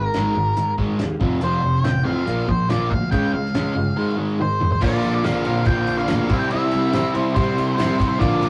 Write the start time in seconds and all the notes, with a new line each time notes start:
Already playing: G#2 D#3 A#4
0.14 G#1 G#2 D#3 G#3, snare, closed hi-hat
0.35 G#1 G#2 D#3
0.57 G#2 D#3, closed hi-hat
0.78 G#2 D#3 G#3, kick
0.99 D#2 G#2 D#3, snare, closed hi-hat
1.20 F1 F2 C3 F3, kick
1.40 F1 F2 C3 F3 F4 A4 C5, closed hi-hat
1.62 F1 F2 C3
1.75 snare
1.84 A1 F2 C3 F4 A4 C5 G5, snare, closed hi-hat
2.04 F2 C3 F3 F5
2.26 A#1 A#2 F3 A#3 F4 A#4 D5, closed hi-hat
2.48 A#1 A#2 F3 C5, kick
2.69 A#1 A#2 F3 A#3 F4 A#4 D5, snare, closed hi-hat
2.90 D2 A#2 F3 F5, kick
3.11 C#2 C#3 G#3 C#4 F4 G#4 C#5 G5, kick, closed hi-hat
3.33 C#2 C#3 G#3 F5
3.45 snare
3.54 C#2 C#3 G#3 C#4 F4 G#4 C#5, snare, closed hi-hat
3.75 G1 C#3 G#3
3.96 G#2 D#3 G#3 G#4 A#4 C5
4.17 G#2 D#3 G#3 G#5
4.39 G#2 D#3 G#4 A#4 C5 D#5, high tom
4.60 G#2 D#3, mid tom
4.71 C5, floor tom
4.81 A#1 A#2 D3 F3 A#3 D4 F4 A#4 D5 F5, kick, crash, tambourine
5.02 A#1, ride, tambourine
5.14 D5
5.24 A#1 A#2 F3 A#3 D4 F4 A#4 D5 F5, snare, ride, tambourine
5.44 A#1 F3 A#3 D4 F4 A#4 C5, ride
5.65 A#1 A#2 F3 A#3 D4 F4 A#4 D5 G5, kick, ride, tambourine
5.87 A#1, ride, tambourine
5.98 F5, snare
6.07 D2 A#2 F3 A#3 D4 F4 A#4 F5, snare, ride, tambourine
6.19 F5
6.27 C2 C3 C4 E4 G4 C5 E5, kick, ride, tambourine
6.32 C3 G3
6.39 G5
6.50 C2 C3 G3 C4 E4 E5, ride, tambourine
6.71 C2, ride, tambourine
6.92 C2 C3 G3 C4 E4 G4 C5, snare, ride, tambourine
7.14 C2 G3 C4 E4 G4 C5, ride
7.34 C2 C3 G3 C4 E4 G4 C5, kick, ride, tambourine
7.58 C2, ride, tambourine
7.76 C2 C3 G3 C4 E4 G4 C5, snare, ride, tambourine
7.99 C2 G3 C4 E4, kick, ride, tambourine
8.08 C5
8.18 A#1 A#2 D3 F3 A#3 D4 F4 A#4 D5 F5, kick, ride, tambourine
8.41 A#1, snare, ride, tambourine